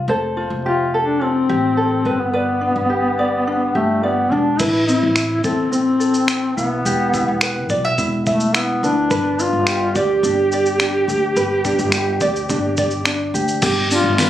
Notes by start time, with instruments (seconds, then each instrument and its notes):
Already playing: ukulele F4 F5
0.08 upright bass F1, ukulele A4 C5
0.37 ukulele F4
0.50 upright bass F1
0.65 duduk F4, ukulele G4
0.94 ukulele A4
1.03 duduk D4
1.21 duduk C4, ukulele F4
1.49 upright bass A1, ukulele G4
1.77 ukulele A4
2.05 upright bass G1, ukulele B4
2.20 duduk B3
2.33 ukulele B4 D5
2.61 ukulele D4
2.76 upright bass G1
2.90 ukulele G4
3.19 ukulele D5
3.47 ukulele D4
3.75 upright bass G1, duduk A3, ukulele G4
4.03 duduk B3, ukulele D5
4.31 upright bass E1, duduk D4, ukulele D4
4.59 upright bass A1, duduk E4, ukulele B4, kick, crash, shaker
4.87 ukulele C4, duduk E4, shaker
5.03 upright bass A1
5.16 ukulele E4, finger snap, shaker
5.43 upright bass E2, duduk C4, ukulele A4, kick, shaker
5.72 upright bass A1, ukulele C4, duduk C4, shaker
6.00 ukulele A4, shaker
6.14 shaker
6.28 finger snap, shaker
6.56 upright bass B1, duduk B3, ukulele E4, shaker
6.85 upright bass E1, ukulele G4, shaker
7.14 ukulele E4, kick, shaker
7.28 upright bass E1
7.41 ukulele B4, finger snap, shaker
7.69 upright bass B1, ukulele D5, kick, shaker
7.85 ukulele E5
7.98 upright bass E1, ukulele E4, kick, shaker
8.26 duduk A3, ukulele E5, kick, shaker
8.40 shaker
8.54 duduk B3, ukulele E4, finger snap, shaker
8.83 upright bass D2, duduk D4, ukulele B4, shaker
9.11 upright bass G1, ukulele B4, kick, shaker
9.39 ukulele D4, duduk F4, shaker
9.53 upright bass G1
9.67 ukulele G4, finger snap, shaker
9.95 upright bass D2, duduk G4, ukulele D5, kick, shaker
10.23 upright bass G1, ukulele D4, shaker
10.52 ukulele D5, shaker
10.66 shaker
10.80 ukulele D4, finger snap, shaker
11.08 upright bass D2, ukulele G4, shaker
11.36 upright bass G1, ukulele B4, shaker
11.65 ukulele D4, finger snap, kick, shaker
11.79 upright bass G1, shaker
11.92 ukulele G4, finger snap, shaker
12.20 upright bass D2, ukulele D5, kick, shaker
12.36 shaker
12.49 upright bass G1, ukulele D4, kick, shaker
12.77 ukulele D5, kick, shaker
12.91 shaker
13.05 ukulele D4, finger snap, shaker
13.34 upright bass D2, ukulele G4, shaker
13.48 shaker
13.62 upright bass G1, ukulele G4, kick, crash, tambourine, shaker
13.91 ukulele D4, duduk F4, tambourine, shaker
14.04 upright bass G1
14.18 ukulele B4, snare, tambourine, shaker